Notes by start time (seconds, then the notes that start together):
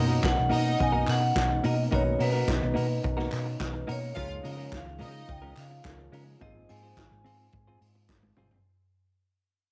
Already playing: B2 F#3 B3 C#4 D#4 A#4
0.07 A#3 D#4 F#4 A#4
0.23 B1 F#5, kick, snare, clap
0.36 B1, muted clean electric guitar stroke
0.49 B2 A#3 D#4 F#4 A#4 D#5, open hi-hat
0.64 muted clean electric guitar stroke
0.78 B1 G#5, muted clean electric guitar stroke, kick, closed hi-hat
0.92 A#3 D#4 F#4 A#4
1.07 B2 F#5, muted clean electric guitar stroke, clap, open hi-hat
1.21 muted clean electric guitar stroke
1.36 B1, muted clean electric guitar stroke, kick, snare, clap, closed hi-hat
1.49 muted clean electric guitar stroke
1.64 B2 A#3 D#4 F#4 A#4 D#5, open hi-hat
1.77 muted clean electric guitar stroke
1.91 B1 F#3 A#3 B3 C#4 D#4 F#4 A#4 B4 C#5, kick, closed hi-hat
2.05 muted clean electric guitar stroke
2.19 B2 A#3 D#4 F#4 A#4 B4, open hi-hat
2.33 A#3 D#4 F#4 A#4
2.48 B1, kick, snare, clap, closed hi-hat
2.61 B1, muted clean electric guitar stroke
2.74 B2 A#3 D#4 F#4 A#4, open hi-hat
2.89 muted clean electric guitar stroke
3.03 B1, muted clean electric guitar stroke, kick, closed hi-hat
3.17 A#3 D#4 F#4 A#4, snare
3.32 B2, muted clean electric guitar stroke, clap, open hi-hat
3.46 muted clean electric guitar stroke
3.60 B1, muted clean electric guitar stroke, kick, snare, clap, closed hi-hat
3.74 muted clean electric guitar stroke
3.87 B2 A#3 D#4 F#4 A#4, open hi-hat
3.91 C#5
4.01 muted clean electric guitar stroke
4.15 C#2 C#3 F3 G#3 A#3 C#4 D#4 F4 G#4 A#4 F5, kick, closed hi-hat
4.30 muted clean electric guitar stroke
4.43 C#3 G#3 C#4 D#4 F4 A#4 D#5, open hi-hat
4.57 G#3 C#4 F4 A#4
4.72 C#2 F5, kick, snare, clap
4.86 C#2, muted clean electric guitar stroke
4.99 C#3 G#3 C#4 D#4 F4 A#4 D#5, open hi-hat
5.14 muted clean electric guitar stroke
5.28 C#2 G5, muted clean electric guitar stroke, kick, closed hi-hat
5.42 G#3 C#4 F4 A#4
5.56 C#3 F5, muted clean electric guitar stroke, clap, open hi-hat
5.70 muted clean electric guitar stroke
5.84 C#2 F3 A#3 C#4 D#4 A#4, muted clean electric guitar stroke, kick, snare, clap, closed hi-hat
5.99 muted clean electric guitar stroke
6.12 C#3 G#3 C#4 F4 A#4, open hi-hat
6.26 muted clean electric guitar stroke
6.40 G#1 F3 A#3 C4 D#4 F4 G#4 C5 D#5, kick, closed hi-hat
6.55 muted clean electric guitar stroke
6.69 G#2 C4 F4 G#4 C5 G#5, open hi-hat
6.83 C4 F4 G#4 C5
6.97 G#1, kick, snare, clap, closed hi-hat
7.11 G#1, muted clean electric guitar stroke
7.25 G#2 C4 F4 G#4 C5, open hi-hat
7.39 muted clean electric guitar stroke
7.53 G#2, muted clean electric guitar stroke, kick, closed hi-hat
7.67 C4 F4 G#4 C5
7.81 G#2, muted clean electric guitar stroke, open hi-hat
7.95 muted clean electric guitar stroke
8.09 G#1, muted clean electric guitar stroke, kick, snare, clap
8.23 muted clean electric guitar stroke, high tom
8.37 G1 C4 F4 G#4 C5, mid tom
8.51 muted clean electric guitar stroke, floor tom